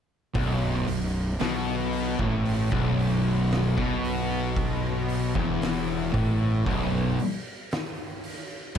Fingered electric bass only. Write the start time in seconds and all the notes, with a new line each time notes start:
0.35 B0
0.89 B0
1.41 B1
2.19 A1
2.72 B0
3.78 B1
5.36 E1
6.14 A1
6.67 B0